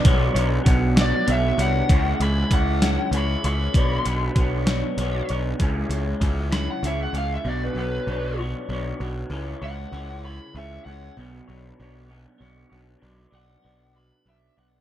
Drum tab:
HH |xxxxxx|xxxxxx|xxxxxx|xxxxxx|
SD |---o--|---o--|---o--|---o--|
BD |o-o---|o-o---|o-o---|o-o---|

HH |------|------|------|------|
SD |------|------|------|------|
BD |------|------|------|------|